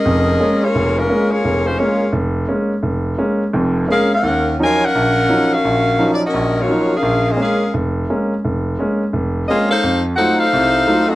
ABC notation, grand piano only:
X:1
M:4/4
L:1/8
Q:"Swing" 1/4=172
K:Bbm
V:1 name="Grand piano" clef=bass
[F,,,F,,]2 [A,B,D] z F,,,2 [A,B,D] z | F,,,2 [A,B,D] z F,,,2 [A,B,D] z | F,,,2 [A,B,D] z [F,,,F,,]2 [A,B,D] z | E,,2 [F,G,DE] z B,,,2 [F,G,DE] z |
B,,,2 [F,G,DE] z B,,,2 [F,G,DE] z | B,,,2 [A,B,D] z F,,,2 [A,B,D] z | F,,,2 [A,B,D] z F,,,2 [A,B,D] z | F,,2 [G,=A,EF] z C,,2 [G,A,EF] z |]